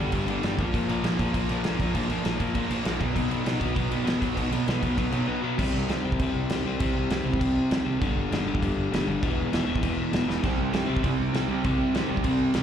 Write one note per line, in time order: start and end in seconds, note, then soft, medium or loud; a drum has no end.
0.00 0.11 G1 medium
0.00 0.11 G2 medium
0.00 0.11 D3 medium
0.00 0.12 G3 medium
0.12 0.26 G1 medium
0.12 0.27 G2 medium
0.12 0.27 D3 loud
0.12 0.26 G3 loud
0.12 kick medium
0.12 crash medium
0.27 0.42 G1 medium
0.27 0.41 G2 medium
0.27 0.42 D3 medium
0.27 0.43 G3 medium
0.27 crash medium
0.43 0.58 G1 medium
0.43 0.58 G2 medium
0.43 0.58 D3 medium
0.43 0.58 G3 medium
0.43 snare loud
0.43 crash medium
0.58 0.71 A#1 medium
0.58 0.74 A#2 medium
0.58 0.73 F3 medium
0.58 0.72 A#3 loud
0.58 kick loud
0.58 crash medium
0.72 0.87 A#1 medium
0.72 0.88 A#2 medium
0.72 0.89 F3 loud
0.72 0.90 A#3 loud
0.72 kick loud
0.72 crash medium
0.89 1.02 A#1 medium
0.89 1.04 A#2 medium
0.89 1.03 F3 medium
0.89 1.03 A#3 medium
0.89 crash medium
1.03 1.17 A#1 medium
1.03 1.18 A#2 medium
1.03 1.18 F3 medium
1.03 1.18 A#3 loud
1.03 snare medium
1.03 crash medium
1.19 1.32 A#1 medium
1.19 1.34 A#2 medium
1.19 1.33 F3 medium
1.19 1.33 A#3 medium
1.19 kick medium
1.19 crash medium
1.34 1.48 A#1 medium
1.34 1.48 A#2 medium
1.34 1.49 F3 loud
1.34 1.50 A#3 loud
1.34 kick loud
1.34 crash medium
1.49 1.63 A#1 medium
1.49 1.66 A#2 medium
1.49 1.65 F3 medium
1.49 1.64 A#3 medium
1.49 crash medium
1.64 1.78 A#1 loud
1.64 1.80 A#2 medium
1.64 1.80 F3 medium
1.64 1.81 A#3 medium
1.64 snare loud
1.64 crash medium
1.77 1.92 A#1 medium
1.77 1.93 A#2 medium
1.77 kick medium
1.77 crash medium
1.81 1.95 A#2 medium
1.81 1.95 F3 medium
1.81 1.94 A#3 medium
1.95 2.08 A#1 loud
1.95 2.09 A#2 medium
1.95 2.10 F3 loud
1.95 2.11 A#3 loud
1.95 kick medium
1.95 crash medium
2.07 2.22 A#1 medium
2.07 2.26 A#2 medium
2.07 2.23 F3 loud
2.07 crash medium
2.11 2.26 F3 medium
2.11 2.24 A#3 loud
2.25 2.38 A#1 medium
2.25 2.39 A#2 medium
2.25 2.40 F3 loud
2.25 2.40 A#3 loud
2.25 snare loud
2.25 crash medium
2.37 2.53 A#1 loud
2.37 2.54 A#2 medium
2.37 2.54 F3 medium
2.37 2.53 A#3 medium
2.37 kick medium
2.37 crash medium
2.42 2.54 F3 medium
2.55 2.68 A#1 medium
2.55 2.68 A#2 medium
2.55 2.69 F3 loud
2.55 2.70 A#3 loud
2.55 kick loud
2.55 crash medium
2.69 2.83 A#1 medium
2.69 2.85 A#2 medium
2.69 2.85 F3 loud
2.69 2.84 A#3 medium
2.69 crash medium
2.85 2.98 A#1 loud
2.85 2.99 A#2 medium
2.85 2.99 F3 medium
2.85 2.99 A#3 medium
2.85 snare loud
2.85 crash medium
2.99 3.14 B1 medium
2.99 3.15 B2 loud
2.99 3.14 F#3 loud
2.99 3.14 B3 loud
2.99 kick loud
2.99 crash medium
3.14 3.29 B1 loud
3.14 3.29 B2 loud
3.14 3.30 F#3 loud
3.14 3.30 B3 loud
3.14 kick loud
3.14 crash medium
3.30 3.44 B1 medium
3.30 3.45 B2 medium
3.30 3.45 F#3 loud
3.30 3.44 B3 loud
3.30 crash medium
3.44 3.59 B1 medium
3.44 3.57 B2 medium
3.44 3.58 F#3 loud
3.44 3.59 B3 loud
3.44 snare loud
3.44 crash medium
3.58 3.74 B1 medium
3.58 3.74 B2 medium
3.58 3.74 F#3 medium
3.58 3.74 B3 loud
3.58 kick medium
3.58 crash medium
3.62 3.77 B2 medium
3.75 3.89 B1 medium
3.75 3.89 B2 medium
3.75 3.90 F#3 loud
3.75 3.91 B3 loud
3.75 kick loud
3.75 crash medium
3.91 4.04 B1 medium
3.91 4.04 B2 medium
3.91 4.04 F#3 medium
3.91 4.03 B3 medium
3.91 crash medium
4.04 4.19 B1 loud
4.04 4.19 B2 medium
4.04 4.19 F#3 medium
4.04 4.20 B3 loud
4.04 crash medium
4.08 snare loud
4.21 4.35 B1 loud
4.21 4.35 B2 medium
4.21 4.34 F#3 medium
4.21 4.34 B3 loud
4.21 kick loud
4.21 crash medium
4.35 4.50 B1 loud
4.35 4.49 B2 medium
4.35 4.50 F#3 loud
4.35 4.51 B3 loud
4.35 kick loud
4.35 crash medium
4.50 4.64 B1 medium
4.50 4.68 B2 loud
4.50 4.67 F#3 loud
4.50 4.67 B3 loud
4.50 crash medium
4.68 4.81 B1 loud
4.68 4.82 B2 medium
4.68 4.82 F#3 medium
4.68 4.83 B3 loud
4.68 snare loud
4.68 crash medium
4.82 4.95 B1 loud
4.82 4.98 B2 medium
4.82 4.98 F#3 medium
4.82 4.97 B3 medium
4.82 kick loud
4.82 crash medium
4.98 5.11 B1 loud
4.98 5.10 B2 medium
4.98 5.11 F#3 loud
4.98 5.11 B3 loud
4.98 kick loud
4.98 crash medium
5.12 5.26 B1 medium
5.12 5.27 B2 medium
5.12 5.26 F#3 medium
5.12 5.26 B3 loud
5.12 crash medium
5.27 5.42 B2 medium
5.27 5.42 F#3 loud
5.27 5.43 B3 loud
5.43 5.57 B2 medium
5.43 5.58 F#3 medium
5.43 5.58 B3 medium
5.58 5.69 C2 loud
5.58 5.89 C3 loud
5.58 5.88 G3 loud
5.58 5.89 C4 loud
5.58 kick loud
5.58 crash loud
5.58 crash medium
5.73 5.83 C2 medium
5.89 5.99 C2 loud
5.89 6.05 C3 loud
5.89 6.05 G3 medium
5.89 6.04 C4 loud
5.89 snare loud
5.89 crash medium
6.04 6.14 C2 loud
6.04 6.20 C3 medium
6.04 6.22 G3 medium
6.04 6.21 C4 medium
6.12 kick medium
6.19 6.29 C2 loud
6.19 6.51 C3 loud
6.19 6.52 G3 loud
6.19 6.51 C4 loud
6.19 kick loud
6.19 crash medium
6.35 6.45 C2 medium
6.49 6.59 C2 loud
6.49 6.67 C3 medium
6.49 6.66 G3 medium
6.49 6.65 C4 medium
6.49 snare loud
6.49 crash medium
6.64 6.74 C2 medium
6.64 6.79 C3 medium
6.64 6.81 G3 medium
6.64 6.80 C4 loud
6.80 6.90 C2 loud
6.80 7.09 C3 medium
6.80 7.11 G3 loud
6.80 7.10 C4 loud
6.80 kick loud
6.80 crash medium
6.95 7.05 C2 loud
7.10 7.20 C2 loud
7.10 7.24 C3 loud
7.10 7.24 G3 loud
7.10 7.23 C4 loud
7.10 snare loud
7.10 crash medium
7.24 7.35 C2 loud
7.24 7.38 C3 medium
7.24 7.39 G3 medium
7.24 7.39 C4 medium
7.33 kick loud
7.39 7.60 C2 medium
7.39 7.68 C3 loud
7.39 7.71 G3 loud
7.39 7.70 C4 loud
7.39 kick loud
7.39 crash medium
7.70 7.81 C2 loud
7.70 7.85 C3 medium
7.70 7.85 G3 medium
7.70 7.84 C4 medium
7.70 snare loud
7.70 crash medium
7.85 7.95 C2 loud
7.85 8.00 C3 medium
7.85 8.01 G3 medium
7.85 8.00 C4 loud
8.01 8.11 G1 loud
8.01 8.31 G2 loud
8.01 8.31 D3 loud
8.01 8.33 G3 loud
8.01 kick loud
8.01 crash medium
8.16 8.26 G1 loud
8.31 8.41 G1 loud
8.31 8.47 G2 loud
8.31 8.47 D3 loud
8.31 8.46 G3 loud
8.31 snare loud
8.31 crash medium
8.45 8.55 G1 loud
8.45 8.62 G2 medium
8.45 8.62 D3 medium
8.45 8.64 G3 loud
8.55 kick medium
8.63 8.72 G1 loud
8.63 8.91 G2 loud
8.63 8.91 D3 loud
8.63 8.93 G3 loud
8.63 kick loud
8.63 crash medium
8.76 8.86 G1 medium
8.91 9.01 G1 loud
8.91 9.08 G2 medium
8.91 9.06 D3 loud
8.91 9.07 G3 loud
8.91 snare loud
8.91 crash medium
9.07 9.16 G1 loud
9.07 9.22 G2 medium
9.07 9.21 D3 loud
9.07 9.23 G3 loud
9.23 9.32 E1 loud
9.23 9.52 E2 loud
9.23 9.52 B2 loud
9.23 9.53 E3 loud
9.23 kick loud
9.23 crash medium
9.38 9.47 E1 medium
9.53 9.63 E1 loud
9.53 9.67 E2 loud
9.53 9.66 B2 loud
9.53 9.66 E3 loud
9.53 snare loud
9.53 crash medium
9.66 9.77 E1 loud
9.66 9.80 E2 medium
9.66 9.81 B2 medium
9.66 9.83 E3 medium
9.76 kick loud
9.81 10.02 E1 medium
9.81 10.11 E2 loud
9.81 10.12 B2 loud
9.81 10.13 E3 loud
9.81 kick loud
9.81 crash medium
10.12 10.23 E1 loud
10.12 10.27 E2 medium
10.12 10.27 B2 medium
10.12 10.27 E3 medium
10.12 snare loud
10.12 crash medium
10.28 10.37 E1 medium
10.28 10.42 E2 medium
10.28 10.42 B2 medium
10.28 10.43 E3 medium
10.28 snare medium
10.43 10.53 C2 loud
10.43 10.72 C3 loud
10.43 10.72 G3 loud
10.43 10.73 C4 loud
10.43 kick loud
10.43 splash medium
10.43 crash medium
10.59 10.68 C2 loud
10.73 10.83 C2 loud
10.73 10.86 C3 loud
10.73 10.87 G3 loud
10.73 10.85 C4 loud
10.73 snare loud
10.73 crash medium
10.86 10.98 C2 medium
10.86 11.02 C3 medium
10.86 11.03 G3 medium
10.86 11.03 C4 medium
10.97 kick loud
11.03 11.13 C2 loud
11.03 11.32 C3 loud
11.03 11.33 G3 loud
11.03 11.33 C4 loud
11.03 kick loud
11.03 crash medium
11.19 11.29 C2 medium
11.33 11.43 C2 loud
11.33 11.48 C3 medium
11.33 11.48 G3 medium
11.33 11.47 C4 medium
11.33 snare loud
11.33 crash medium
11.48 11.58 C2 medium
11.48 11.63 C3 medium
11.48 11.64 G3 loud
11.48 11.63 C4 medium
11.64 11.74 C2 loud
11.64 11.93 C3 loud
11.64 11.94 G3 loud
11.64 11.93 C4 loud
11.64 kick loud
11.64 crash medium
11.79 11.89 C2 loud
11.94 12.04 C2 loud
11.94 12.08 C3 loud
11.94 12.09 G3 loud
11.94 12.08 C4 loud
11.94 snare loud
11.94 crash medium
12.09 12.20 C2 loud
12.09 12.21 C3 medium
12.09 12.23 G3 medium
12.09 12.23 C4 medium
12.17 kick medium
12.22 12.44 C2 loud
12.22 12.53 C3 loud
12.22 12.54 G3 loud
12.22 12.54 C4 loud
12.22 kick loud
12.22 crash medium
12.28 12.56 C3 loud
12.28 12.58 G3 medium
12.28 12.57 C4 loud
12.54 12.63 C2 loud
12.54 12.63 C3 medium
12.54 12.63 G3 medium
12.54 12.63 C4 loud
12.54 snare loud
12.54 crash medium